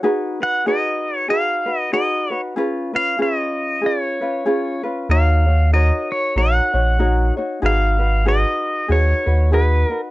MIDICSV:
0, 0, Header, 1, 4, 480
1, 0, Start_track
1, 0, Tempo, 632244
1, 30, Time_signature, 4, 2, 24, 8
1, 7672, End_track
2, 0, Start_track
2, 0, Title_t, "Pedal steel guitar"
2, 0, Program_c, 0, 26
2, 327, Note_on_c, 0, 78, 93
2, 513, Note_off_c, 0, 78, 0
2, 516, Note_on_c, 0, 75, 81
2, 888, Note_off_c, 0, 75, 0
2, 888, Note_on_c, 0, 73, 81
2, 985, Note_off_c, 0, 73, 0
2, 988, Note_on_c, 0, 77, 84
2, 1368, Note_off_c, 0, 77, 0
2, 1368, Note_on_c, 0, 75, 84
2, 1467, Note_off_c, 0, 75, 0
2, 1470, Note_on_c, 0, 75, 73
2, 1826, Note_off_c, 0, 75, 0
2, 2247, Note_on_c, 0, 77, 98
2, 2442, Note_off_c, 0, 77, 0
2, 2446, Note_on_c, 0, 75, 86
2, 2932, Note_off_c, 0, 75, 0
2, 2932, Note_on_c, 0, 73, 69
2, 3655, Note_off_c, 0, 73, 0
2, 3881, Note_on_c, 0, 77, 87
2, 4352, Note_off_c, 0, 77, 0
2, 4355, Note_on_c, 0, 75, 80
2, 4645, Note_on_c, 0, 73, 80
2, 4646, Note_off_c, 0, 75, 0
2, 4840, Note_off_c, 0, 73, 0
2, 4841, Note_on_c, 0, 78, 92
2, 5570, Note_off_c, 0, 78, 0
2, 5815, Note_on_c, 0, 77, 98
2, 6287, Note_off_c, 0, 77, 0
2, 6290, Note_on_c, 0, 75, 86
2, 6772, Note_on_c, 0, 73, 81
2, 6774, Note_off_c, 0, 75, 0
2, 7241, Note_off_c, 0, 73, 0
2, 7244, Note_on_c, 0, 71, 73
2, 7509, Note_off_c, 0, 71, 0
2, 7509, Note_on_c, 0, 70, 73
2, 7594, Note_off_c, 0, 70, 0
2, 7672, End_track
3, 0, Start_track
3, 0, Title_t, "Ukulele"
3, 0, Program_c, 1, 24
3, 23, Note_on_c, 1, 68, 77
3, 27, Note_on_c, 1, 63, 84
3, 31, Note_on_c, 1, 66, 85
3, 31, Note_on_c, 1, 71, 88
3, 298, Note_off_c, 1, 71, 0
3, 307, Note_on_c, 1, 71, 46
3, 308, Note_off_c, 1, 66, 0
3, 312, Note_off_c, 1, 68, 0
3, 313, Note_off_c, 1, 63, 0
3, 317, Note_on_c, 1, 66, 42
3, 322, Note_on_c, 1, 63, 36
3, 498, Note_off_c, 1, 63, 0
3, 498, Note_off_c, 1, 66, 0
3, 504, Note_off_c, 1, 71, 0
3, 504, Note_on_c, 1, 68, 72
3, 507, Note_on_c, 1, 63, 74
3, 507, Note_on_c, 1, 66, 72
3, 513, Note_on_c, 1, 71, 76
3, 972, Note_off_c, 1, 63, 0
3, 972, Note_off_c, 1, 68, 0
3, 975, Note_on_c, 1, 68, 59
3, 980, Note_off_c, 1, 66, 0
3, 981, Note_on_c, 1, 63, 58
3, 989, Note_on_c, 1, 66, 59
3, 991, Note_off_c, 1, 71, 0
3, 994, Note_on_c, 1, 71, 59
3, 1250, Note_off_c, 1, 71, 0
3, 1259, Note_on_c, 1, 71, 51
3, 1262, Note_off_c, 1, 66, 0
3, 1265, Note_off_c, 1, 63, 0
3, 1268, Note_off_c, 1, 68, 0
3, 1271, Note_on_c, 1, 66, 47
3, 1274, Note_on_c, 1, 63, 40
3, 1454, Note_off_c, 1, 63, 0
3, 1457, Note_off_c, 1, 66, 0
3, 1462, Note_off_c, 1, 71, 0
3, 1462, Note_on_c, 1, 68, 70
3, 1463, Note_on_c, 1, 63, 75
3, 1466, Note_on_c, 1, 66, 73
3, 1474, Note_on_c, 1, 71, 78
3, 1738, Note_off_c, 1, 71, 0
3, 1746, Note_off_c, 1, 66, 0
3, 1747, Note_on_c, 1, 71, 44
3, 1752, Note_off_c, 1, 63, 0
3, 1752, Note_off_c, 1, 68, 0
3, 1755, Note_on_c, 1, 66, 43
3, 1761, Note_on_c, 1, 63, 42
3, 1944, Note_on_c, 1, 68, 77
3, 1946, Note_off_c, 1, 63, 0
3, 1946, Note_off_c, 1, 71, 0
3, 1949, Note_on_c, 1, 61, 74
3, 1950, Note_off_c, 1, 66, 0
3, 1953, Note_on_c, 1, 65, 83
3, 1958, Note_on_c, 1, 71, 93
3, 2219, Note_off_c, 1, 71, 0
3, 2226, Note_off_c, 1, 65, 0
3, 2228, Note_on_c, 1, 71, 42
3, 2231, Note_off_c, 1, 61, 0
3, 2232, Note_off_c, 1, 68, 0
3, 2235, Note_on_c, 1, 65, 44
3, 2241, Note_on_c, 1, 61, 36
3, 2411, Note_off_c, 1, 61, 0
3, 2411, Note_off_c, 1, 65, 0
3, 2414, Note_off_c, 1, 71, 0
3, 2419, Note_on_c, 1, 68, 66
3, 2420, Note_on_c, 1, 61, 72
3, 2420, Note_on_c, 1, 65, 77
3, 2423, Note_on_c, 1, 71, 80
3, 2887, Note_off_c, 1, 68, 0
3, 2896, Note_on_c, 1, 68, 58
3, 2901, Note_off_c, 1, 65, 0
3, 2903, Note_off_c, 1, 61, 0
3, 2906, Note_off_c, 1, 71, 0
3, 2906, Note_on_c, 1, 61, 54
3, 2910, Note_on_c, 1, 65, 57
3, 2915, Note_on_c, 1, 71, 63
3, 3187, Note_off_c, 1, 71, 0
3, 3188, Note_off_c, 1, 68, 0
3, 3193, Note_off_c, 1, 61, 0
3, 3195, Note_off_c, 1, 65, 0
3, 3196, Note_on_c, 1, 71, 47
3, 3204, Note_on_c, 1, 65, 49
3, 3209, Note_on_c, 1, 61, 41
3, 3381, Note_off_c, 1, 65, 0
3, 3382, Note_off_c, 1, 61, 0
3, 3383, Note_off_c, 1, 71, 0
3, 3383, Note_on_c, 1, 68, 76
3, 3390, Note_on_c, 1, 65, 70
3, 3391, Note_on_c, 1, 61, 75
3, 3392, Note_on_c, 1, 71, 77
3, 3660, Note_off_c, 1, 71, 0
3, 3665, Note_off_c, 1, 65, 0
3, 3670, Note_on_c, 1, 71, 50
3, 3672, Note_off_c, 1, 68, 0
3, 3674, Note_on_c, 1, 65, 43
3, 3676, Note_off_c, 1, 61, 0
3, 3684, Note_on_c, 1, 61, 47
3, 3867, Note_off_c, 1, 71, 0
3, 3868, Note_on_c, 1, 70, 74
3, 3869, Note_off_c, 1, 65, 0
3, 3873, Note_off_c, 1, 61, 0
3, 3876, Note_on_c, 1, 63, 71
3, 3880, Note_on_c, 1, 66, 69
3, 3883, Note_on_c, 1, 73, 67
3, 4136, Note_off_c, 1, 73, 0
3, 4145, Note_on_c, 1, 73, 42
3, 4148, Note_off_c, 1, 66, 0
3, 4154, Note_off_c, 1, 63, 0
3, 4154, Note_off_c, 1, 70, 0
3, 4157, Note_on_c, 1, 66, 44
3, 4163, Note_on_c, 1, 63, 39
3, 4343, Note_off_c, 1, 63, 0
3, 4344, Note_off_c, 1, 73, 0
3, 4347, Note_off_c, 1, 66, 0
3, 4348, Note_on_c, 1, 70, 64
3, 4353, Note_on_c, 1, 63, 66
3, 4356, Note_on_c, 1, 66, 73
3, 4362, Note_on_c, 1, 73, 79
3, 4818, Note_off_c, 1, 70, 0
3, 4828, Note_on_c, 1, 70, 54
3, 4834, Note_off_c, 1, 63, 0
3, 4835, Note_off_c, 1, 73, 0
3, 4837, Note_off_c, 1, 66, 0
3, 4837, Note_on_c, 1, 63, 56
3, 4840, Note_on_c, 1, 66, 57
3, 4844, Note_on_c, 1, 73, 64
3, 5106, Note_off_c, 1, 73, 0
3, 5113, Note_off_c, 1, 66, 0
3, 5114, Note_off_c, 1, 70, 0
3, 5115, Note_on_c, 1, 73, 47
3, 5118, Note_off_c, 1, 63, 0
3, 5122, Note_on_c, 1, 66, 42
3, 5127, Note_on_c, 1, 63, 43
3, 5301, Note_off_c, 1, 63, 0
3, 5305, Note_off_c, 1, 66, 0
3, 5306, Note_on_c, 1, 70, 69
3, 5307, Note_off_c, 1, 73, 0
3, 5311, Note_on_c, 1, 63, 72
3, 5314, Note_on_c, 1, 66, 75
3, 5317, Note_on_c, 1, 73, 73
3, 5585, Note_off_c, 1, 73, 0
3, 5593, Note_off_c, 1, 70, 0
3, 5595, Note_off_c, 1, 63, 0
3, 5595, Note_off_c, 1, 66, 0
3, 5595, Note_on_c, 1, 73, 51
3, 5604, Note_on_c, 1, 66, 52
3, 5608, Note_on_c, 1, 63, 43
3, 5776, Note_off_c, 1, 63, 0
3, 5782, Note_off_c, 1, 66, 0
3, 5784, Note_on_c, 1, 68, 70
3, 5785, Note_on_c, 1, 63, 73
3, 5789, Note_off_c, 1, 73, 0
3, 5791, Note_on_c, 1, 66, 81
3, 5792, Note_on_c, 1, 71, 79
3, 6056, Note_off_c, 1, 71, 0
3, 6062, Note_off_c, 1, 66, 0
3, 6066, Note_on_c, 1, 71, 45
3, 6068, Note_off_c, 1, 63, 0
3, 6071, Note_on_c, 1, 66, 41
3, 6072, Note_off_c, 1, 68, 0
3, 6077, Note_on_c, 1, 63, 37
3, 6262, Note_off_c, 1, 63, 0
3, 6264, Note_off_c, 1, 66, 0
3, 6265, Note_off_c, 1, 71, 0
3, 6267, Note_on_c, 1, 68, 67
3, 6271, Note_on_c, 1, 63, 67
3, 6273, Note_on_c, 1, 66, 70
3, 6274, Note_on_c, 1, 71, 72
3, 6735, Note_off_c, 1, 68, 0
3, 6741, Note_off_c, 1, 63, 0
3, 6744, Note_on_c, 1, 68, 58
3, 6750, Note_on_c, 1, 63, 58
3, 6752, Note_off_c, 1, 66, 0
3, 6752, Note_off_c, 1, 71, 0
3, 6755, Note_on_c, 1, 66, 64
3, 6760, Note_on_c, 1, 71, 61
3, 7020, Note_off_c, 1, 71, 0
3, 7030, Note_on_c, 1, 71, 48
3, 7031, Note_off_c, 1, 66, 0
3, 7032, Note_off_c, 1, 68, 0
3, 7035, Note_off_c, 1, 63, 0
3, 7040, Note_on_c, 1, 66, 50
3, 7044, Note_on_c, 1, 63, 41
3, 7221, Note_off_c, 1, 63, 0
3, 7225, Note_off_c, 1, 66, 0
3, 7225, Note_on_c, 1, 68, 70
3, 7227, Note_off_c, 1, 71, 0
3, 7230, Note_on_c, 1, 63, 82
3, 7234, Note_on_c, 1, 66, 74
3, 7236, Note_on_c, 1, 71, 82
3, 7506, Note_off_c, 1, 71, 0
3, 7512, Note_off_c, 1, 66, 0
3, 7513, Note_off_c, 1, 68, 0
3, 7515, Note_on_c, 1, 71, 47
3, 7516, Note_off_c, 1, 63, 0
3, 7521, Note_on_c, 1, 66, 47
3, 7528, Note_on_c, 1, 63, 38
3, 7672, Note_off_c, 1, 63, 0
3, 7672, Note_off_c, 1, 66, 0
3, 7672, Note_off_c, 1, 71, 0
3, 7672, End_track
4, 0, Start_track
4, 0, Title_t, "Sub bass"
4, 0, Program_c, 2, 38
4, 3866, Note_on_c, 2, 39, 96
4, 4491, Note_off_c, 2, 39, 0
4, 4828, Note_on_c, 2, 34, 85
4, 5014, Note_off_c, 2, 34, 0
4, 5117, Note_on_c, 2, 34, 86
4, 5555, Note_off_c, 2, 34, 0
4, 5791, Note_on_c, 2, 32, 101
4, 6415, Note_off_c, 2, 32, 0
4, 6752, Note_on_c, 2, 39, 79
4, 6937, Note_off_c, 2, 39, 0
4, 7037, Note_on_c, 2, 39, 82
4, 7475, Note_off_c, 2, 39, 0
4, 7672, End_track
0, 0, End_of_file